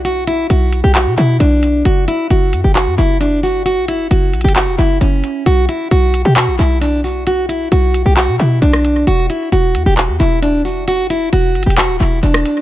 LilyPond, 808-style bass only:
\new Staff \with { instrumentName = "808-style bass" } { \clef bass \time 4/4 \key b \minor \tempo 4 = 133 b,,4 b,,8. b,,8 b,16 b,8 b,,4 | fis,,8 r8 fis,,8 fis,16 fis,,8 fis,16 fis,,4.~ | fis,,16 ais,,16. fis,,16. fis,,8 ais,,16 fis,,8 e,,16 fis,,8 fis,,8 r8 | b,,8 r8 b,,8. b,8 ais,,16 b,,4.~ |
b,,4 b,,8. b,,8 b,16 b,8 b,,4 | e,,8 r8 e,,8 e,16 e,,8 e,16 e,,4.~ | e,,16 g,,16. e,,16. e,,8 g,,16 e,,8 d,,16 e,,8 e,,8 r8 | }